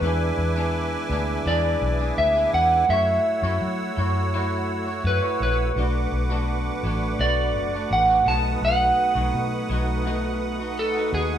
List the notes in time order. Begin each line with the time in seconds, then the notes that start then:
Already playing: B4
0.01 E2 E3 G#3 B3 D4 E4 E5 G#5 D6
0.05 D4 G#4 B4
0.37 E2
0.56 E3 B3 D4 G#4
1.09 D2 E3 B3 D4 G#4
1.46 E2 E3 B3 D4 G#4 D5
1.81 B1
1.99 B3 D4 G#4
2.18 D2 E5
2.35 B3 D4 G#4
2.53 E2 F#5
2.88 F#2 A3 E4 F#4 C#5 E5 F#5 E6
2.93 C#5
3.42 F#2 F#3 A3 E4 F#4 C#5
3.61 F#3
3.97 F#2 A3 E4 F#4 C#5
4.34 F#3 A3 E4 F#4 C#5
4.87 E4 F#4 C#5
5.04 F#2 B4
5.23 E4 F#4 C#5
5.40 A#1 B4
5.74 B1 F#3 A3 D4 F#4 B4 D6
5.79 A3 D4 F#4 B4
6.12 B1
6.30 B2 F#3 A3 D4 F#4
6.83 A1 F#3 A3 D4 F#4
7.19 B1 B2 F#3 A3 D4 F#4 D5
7.55 F#1
7.73 A3 D4 F#4
7.91 A1 F#5
8.08 A3 D4 F#4
8.26 B1 B2 F#3 A3 D#4 F#4 A5 D#6
8.30 F#4 B4
8.61 B1 F#5
9.15 B1 B2 F#3 A3 D#4 F#4
9.34 B2
9.69 B1 F#3 A3 D#4 F#4
10.05 B2 F#3 A3 D#4 F#4
10.59 A3 D#4 F#4
10.79 A4
10.95 A3 D#4 F#4
11.13 D#2 G#4